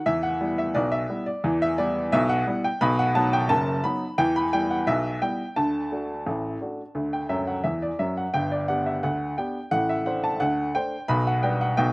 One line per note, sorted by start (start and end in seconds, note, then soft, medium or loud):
0.06 0.35 E2 medium
0.06 0.35 E3 loud
0.06 0.23 E5 loud
0.23 0.57 F#5 medium
0.41 0.59 G3 medium
0.41 0.60 B3 medium
0.41 0.60 E4 medium
0.58 0.75 E5 medium
0.74 1.04 B1 medium
0.74 1.04 B2 medium
0.74 0.92 D5 loud
0.92 1.26 E5 loud
1.09 1.28 G3 medium
1.09 1.28 B3 medium
1.09 1.29 E4 medium
1.26 1.61 D5 medium
1.44 1.73 E2 loud
1.44 1.73 E3 loud
1.62 1.79 E5 loud
1.78 1.97 G3 medium
1.78 1.97 B3 medium
1.78 1.98 E4 medium
1.78 2.12 D5 loud
2.12 2.42 B1 loud
2.12 2.42 B2 loud
2.12 2.30 E5 loud
2.29 2.64 F#5 loud
2.47 2.66 G3 medium
2.47 2.66 B3 medium
2.47 2.67 E4 medium
2.64 2.81 G5 medium
2.81 3.10 B1 loud
2.81 3.10 B2 loud
2.81 2.98 B5 loud
2.99 3.16 F#5 loud
3.15 3.34 F#3 medium
3.15 3.35 B3 medium
3.15 3.35 D#4 medium
3.15 3.32 A5 loud
3.33 3.50 G5 loud
3.49 3.79 F#1 loud
3.49 3.79 F#2 medium
3.49 3.84 A5 loud
3.84 4.03 F#3 medium
3.84 4.03 B3 medium
3.84 4.04 D#4 medium
3.84 4.18 B5 loud
4.18 4.47 E2 loud
4.18 4.47 E3 loud
4.18 4.35 G5 loud
4.36 4.53 B5 loud
4.53 4.72 G3 medium
4.53 4.72 B3 medium
4.53 4.73 E4 medium
4.53 4.70 G5 loud
4.71 4.88 F#5 medium
4.87 5.17 B1 loud
4.87 5.17 B2 medium
4.87 5.22 E5 loud
5.22 5.41 G3 medium
5.22 5.41 B3 medium
5.22 5.42 E4 medium
5.22 5.56 G5 medium
5.56 5.86 D2 medium
5.56 5.86 D3 medium
5.56 7.12 A5 loud
5.92 6.10 A3 medium
5.92 6.11 D4 soft
5.92 6.11 F#4 medium
6.26 6.56 A1 medium
6.26 6.55 A2 medium
6.61 6.80 A3 soft
6.61 6.80 D4 soft
6.61 6.81 F#4 soft
6.95 7.24 D2 medium
6.95 7.24 D3 medium
7.13 7.30 G5 medium
7.29 7.55 F#2 medium
7.29 7.55 F#3 medium
7.29 7.47 E5 medium
7.47 7.64 F#5 medium
7.64 7.90 E2 medium
7.64 7.90 E3 medium
7.64 7.81 E5 medium
7.82 7.99 D5 medium
7.99 8.25 F#2 medium
7.99 8.25 F#3 medium
7.99 8.16 E5 medium
8.17 8.34 F#5 medium
8.34 8.63 G1 medium
8.34 8.63 G2 medium
8.34 8.51 G5 loud
8.51 8.69 D5 medium
8.68 8.88 B3 medium
8.68 8.88 D4 soft
8.68 8.88 G4 medium
8.68 8.86 F#5 medium
8.86 9.03 E5 medium
9.03 9.33 D2 medium
9.03 9.32 D3 medium
9.03 9.37 F#5 medium
9.38 9.57 B3 soft
9.38 9.57 D4 soft
9.38 9.57 G4 medium
9.38 9.72 G5 medium
9.71 10.01 A1 medium
9.71 10.01 A2 medium
9.71 9.89 F#5 loud
9.89 10.06 E5 medium
10.06 10.25 A3 medium
10.06 10.25 D4 medium
10.06 10.26 C5 medium
10.06 10.23 F#5 medium
10.24 10.41 A5 medium
10.40 10.70 D2 medium
10.40 10.69 D3 medium
10.40 10.75 F#5 loud
10.75 10.94 A3 medium
10.75 10.94 D4 soft
10.75 10.95 C5 medium
10.75 11.09 G5 medium
11.08 11.38 B1 medium
11.08 11.38 B2 medium
11.08 11.26 B5 loud
11.27 11.44 F#5 medium
11.43 11.62 G3 medium
11.43 11.63 D4 medium
11.43 11.63 B4 medium
11.43 11.60 G5 medium
11.61 11.78 F#5 medium
11.77 11.93 B1 medium
11.77 11.93 B2 medium
11.77 11.93 G5 loud